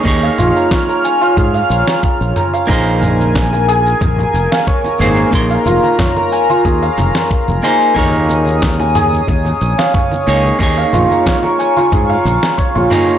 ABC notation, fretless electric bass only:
X:1
M:4/4
L:1/16
Q:"Swing 16ths" 1/4=91
K:Bbm
V:1 name="Fretless electric bass" clef=bass
E,, z B,,, z4 z A,, z B,,, z2 B,,, z2 | B,,,6- B,,, z B,,, z F,,, z3 A,,, z | B,,, z F,,, z4 z E,, z F,,, z2 F,,, z2 | E,,6- E,, z E,, z B,,, z3 D,, z |
E,, z B,,, z4 z A,, z B,,, z2 B,,, z2 |]